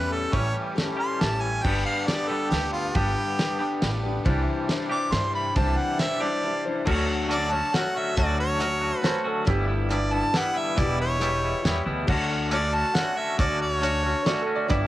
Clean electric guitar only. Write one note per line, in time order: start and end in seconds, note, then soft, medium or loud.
0.00 0.30 A2 medium
0.00 0.31 E3 medium
0.00 0.32 G3 medium
0.00 0.31 C#4 medium
0.00 0.33 G4 medium
0.31 0.96 A2 medium
0.31 0.97 E3 medium
0.31 0.98 G3 loud
0.31 0.96 C#4 medium
0.31 0.96 G4 medium
0.97 1.63 A2 medium
0.97 1.63 E3 medium
0.97 1.64 G3 medium
0.97 1.62 C#4 medium
0.97 1.65 G4 medium
1.63 2.31 G2 medium
1.63 2.28 D3 medium
1.63 2.31 G3 medium
1.63 2.30 B3 medium
1.63 2.29 D4 loud
1.63 2.29 G4 loud
2.30 2.93 G2 medium
2.30 2.93 D3 medium
2.30 2.95 G3 medium
2.30 2.94 B3 medium
2.30 2.95 D4 medium
2.30 2.96 G4 medium
2.94 3.59 G2 medium
2.94 3.59 D3 loud
2.94 3.60 G3 loud
2.94 3.59 B3 loud
2.94 3.59 D4 loud
2.94 3.58 G4 loud
3.59 4.25 G2 medium
3.59 4.24 D3 medium
3.59 4.25 G3 medium
3.59 4.24 B3 medium
3.59 4.25 D4 medium
3.59 4.26 G4 medium
4.24 4.91 C3 medium
4.24 4.91 E3 loud
4.24 4.91 G3 loud
4.24 4.90 D4 loud
4.24 4.89 G4 loud
4.89 5.54 C3 medium
4.89 5.55 E3 medium
4.89 5.55 G3 medium
4.89 5.57 D4 medium
4.89 5.54 G4 loud
5.55 6.20 C3 loud
5.55 6.20 E3 medium
5.55 6.20 G3 medium
5.55 6.20 D4 loud
5.55 6.19 G4 loud
6.20 6.85 C3 medium
6.20 6.85 E3 medium
6.20 6.85 G3 medium
6.20 6.85 D4 loud
6.20 6.85 G4 medium
6.85 7.27 D3 loud
6.85 7.28 F#3 loud
6.85 7.09 A3 loud
6.85 7.09 C#4 loud
6.85 7.07 F#4 loud
7.08 7.29 A3 medium
7.08 7.29 C#4 medium
7.08 7.30 F#4 medium
7.28 7.72 D3 loud
7.28 7.71 F#3 loud
7.28 7.53 A3 loud
7.28 7.52 C#4 medium
7.28 7.50 F#4 loud
7.51 7.72 A3 medium
7.51 7.73 C#4 medium
7.51 7.73 F#4 medium
7.72 7.96 F#3 medium
7.72 7.95 A3 medium
7.72 7.94 C#4 medium
7.72 7.94 F#4 medium
7.95 8.16 D3 medium
7.95 8.16 F#3 medium
7.95 8.17 A3 medium
7.95 8.17 C#4 medium
7.95 8.17 F#4 loud
8.17 8.57 D3 loud
8.17 8.58 F#3 loud
8.17 8.39 A3 loud
8.17 8.37 C#4 loud
8.17 8.37 F#4 loud
8.38 8.59 A3 medium
8.38 8.60 C#4 medium
8.38 8.60 F#4 medium
8.58 9.03 D3 medium
8.58 9.01 F#3 loud
8.58 8.82 A3 medium
8.58 8.81 C#4 loud
8.58 8.80 F#4 medium
8.81 9.01 A3 medium
8.81 9.02 C#4 medium
8.81 9.02 F#4 medium
9.02 9.24 F#3 medium
9.02 9.24 A3 medium
9.02 9.23 C#4 medium
9.02 9.23 F#4 medium
9.24 9.44 D3 medium
9.24 9.46 F#3 medium
9.24 9.46 A3 medium
9.24 9.45 C#4 medium
9.24 9.45 F#4 loud
9.46 9.88 G2 loud
9.46 9.89 D3 loud
9.46 9.69 E3 loud
9.46 9.69 G3 loud
9.46 9.68 B3 loud
9.46 9.67 E4 loud
9.68 9.90 E3 medium
9.68 9.90 G3 medium
9.68 9.90 B3 medium
9.68 9.91 E4 medium
9.89 10.33 G2 loud
9.89 10.34 D3 loud
9.89 10.11 E3 loud
9.89 10.11 G3 loud
9.89 10.10 B3 loud
9.89 10.10 E4 loud
10.11 10.31 E3 medium
10.11 10.32 G3 medium
10.11 10.32 B3 medium
10.11 10.33 E4 medium
10.32 10.54 E3 medium
10.32 10.53 G3 medium
10.32 10.53 B3 medium
10.32 10.53 E4 medium
10.54 10.75 G2 medium
10.54 10.75 D3 medium
10.54 10.75 E3 medium
10.54 10.76 G3 medium
10.54 10.75 B3 medium
10.54 10.75 E4 loud
10.75 11.18 E2 loud
10.75 11.19 B2 loud
10.75 11.00 E3 loud
10.75 10.99 G3 loud
10.75 10.98 B3 loud
10.75 10.97 E4 loud
10.98 11.20 E3 medium
10.98 11.20 G3 medium
10.98 11.20 B3 medium
10.98 11.20 E4 medium
11.19 11.64 E2 loud
11.19 11.64 B2 loud
11.19 11.42 E3 medium
11.19 11.42 G3 loud
11.19 11.41 B3 loud
11.19 11.40 E4 loud
11.41 11.62 E3 medium
11.41 11.63 G3 medium
11.41 11.63 B3 medium
11.41 11.64 E4 medium
11.63 11.85 E3 medium
11.63 11.85 G3 medium
11.63 11.85 B3 medium
11.63 11.84 E4 medium
11.85 12.08 E2 medium
11.85 12.07 B2 medium
11.85 12.07 E3 medium
11.85 12.07 G3 medium
11.85 12.07 B3 medium
11.85 12.06 E4 loud
12.07 12.50 D3 medium
12.07 12.30 A3 loud
12.07 12.30 C#4 loud
12.07 12.28 F#4 loud
12.29 12.50 A3 medium
12.29 12.51 C#4 medium
12.29 12.52 F#4 medium
12.50 12.93 D3 medium
12.50 12.73 A3 loud
12.50 12.72 C#4 loud
12.50 12.72 F#4 loud
12.73 12.95 A3 medium
12.73 12.95 C#4 medium
12.73 12.96 F#4 medium
12.95 13.17 D3 medium
12.95 13.17 A3 medium
12.95 13.16 C#4 medium
12.95 13.15 F#4 medium
13.16 13.36 D3 medium
13.16 13.37 A3 medium
13.16 13.38 C#4 medium
13.16 13.39 F#4 loud
13.38 13.80 D3 loud
13.38 13.60 A3 loud
13.38 13.60 C#4 loud
13.38 13.58 F#4 loud
13.60 13.81 A3 medium
13.60 13.81 C#4 medium
13.60 13.82 F#4 medium
13.81 14.23 D3 loud
13.81 14.04 A3 medium
13.81 14.03 C#4 loud
13.81 14.02 F#4 loud
14.03 14.25 A3 medium
14.03 14.26 C#4 medium
14.03 14.26 F#4 medium
14.24 14.47 D3 medium
14.24 14.46 A3 medium
14.24 14.45 C#4 medium
14.24 14.45 F#4 medium
14.46 14.68 D3 medium
14.46 14.68 A3 medium
14.46 14.68 C#4 loud
14.46 14.68 F#4 loud
14.69 14.87 G2 loud
14.69 14.87 D3 loud
14.69 14.87 E3 loud
14.69 14.87 G3 loud
14.69 14.87 B3 loud
14.69 14.87 E4 loud